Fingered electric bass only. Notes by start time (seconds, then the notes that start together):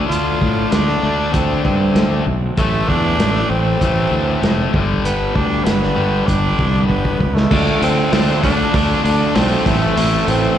0.10 D2
0.42 A2
0.72 D2
1.03 D2
1.34 D2
1.65 G2
1.95 D2
2.26 B1
2.58 A1
2.89 E2
3.19 A1
3.50 A1
3.81 A1
4.11 D2
4.42 F1
4.74 G1
5.04 G1
5.36 D2
5.66 G1
5.98 G1
6.28 G1
6.59 C2
6.90 G1
7.21 C#2
7.51 D2
7.82 D2
8.13 D2
8.44 D2
8.74 D2
9.05 D2
9.36 B1
9.67 A1
9.97 A1
10.28 A1